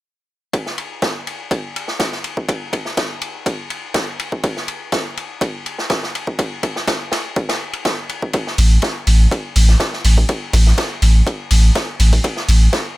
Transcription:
0.53 kick, ride
0.66 snare
0.78 ride
1.02 kick, snare, ride
1.27 ride
1.51 kick, ride
1.76 ride
1.88 snare
2.00 kick, snare, ride
2.12 snare
2.24 ride
2.37 kick
2.49 kick, ride
2.73 kick, ride
2.85 snare
2.97 kick, snare, ride
3.21 ride
3.46 kick, ride
3.70 ride
3.94 kick, snare, ride
4.19 ride
4.32 kick
4.43 kick, ride
4.57 snare
4.68 ride
4.92 kick, snare, ride
5.17 ride
5.41 kick, ride
5.66 ride
5.78 snare
5.90 kick, snare, ride
6.03 snare
6.15 ride
6.27 kick
6.39 kick, ride
6.63 kick, ride
6.76 snare
6.88 kick, snare, ride
7.12 snare, ride
7.36 kick, ride
7.49 snare, ride
7.73 ride
7.85 kick, snare, ride
8.09 ride
8.22 kick
8.33 kick, ride
8.47 snare
8.58 A1, open hi-hat, ride
8.82 kick, snare, ride
9.07 A1, open hi-hat, ride
9.31 kick, ride
9.56 A1, open hi-hat, ride
9.68 snare
9.80 kick, snare, ride
9.93 snare
10.05 A1, open hi-hat, ride
10.18 kick
10.29 kick, ride
10.53 A1, kick, open hi-hat, ride
10.67 snare
10.78 kick, snare, ride
11.02 A1, open hi-hat, ride
11.27 kick, ride
11.50 A1, open hi-hat, ride
11.75 kick, snare, ride
12.00 A1, open hi-hat, ride
12.13 kick, open hi-hat
12.24 kick, ride
12.37 snare
12.49 A1, open hi-hat, ride
12.73 kick, snare, ride

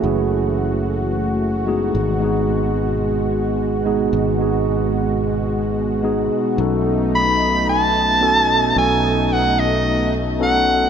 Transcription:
Already playing: E3 A3 C#4 E4 F#4 G#4
0.02 F#1 A3 C#4 E4 F#4 G#4
1.66 G#3 B3 D#4 F#4 G#4
1.95 G#1 B2 G#3
2.20 G#3 B3 D#4 F#4 G#4
3.85 G#3 B3 D#4 F#4 G#4
4.13 G#1
4.38 G#3 B3 D#4 F#4 G#4
6.03 G#3 B3 D#4 F#4 G#4
6.57 B1 A3 B3 C#4 D#4 F#4
6.61 A4
7.15 B5
7.69 A5
8.21 B3 C#4 D#4 F#4 A4
8.74 B1 B3 C#4 D#4 F#4 A4 G#5
9.26 G#5
9.33 F#5
9.59 D#5
10.39 B3 C#4 D#4 F#4 A4 F#5

